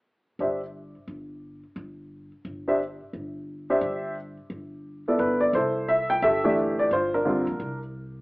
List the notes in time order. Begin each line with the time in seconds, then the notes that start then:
0.39 G1 D4 G4 C5 E5
1.08 G1
1.76 G1
2.45 G1
2.68 D4 G4 C5 E5
3.13 G1
3.70 D4 G4 C5 E5
3.81 G1
4.50 G1
5.08 B3 E4 A4 D5
5.19 G1 B4
5.41 D5
5.53 C2 E4 A4 C5
5.88 E5
6.10 G5
6.22 G1 G4 A4 E5
6.44 E3 A3 D4 G4
6.79 D5
6.91 G1 F4 C5
7.14 D4 F4 A#4
7.25 D3 G3 C4 F4
7.47 A#1
7.60 C2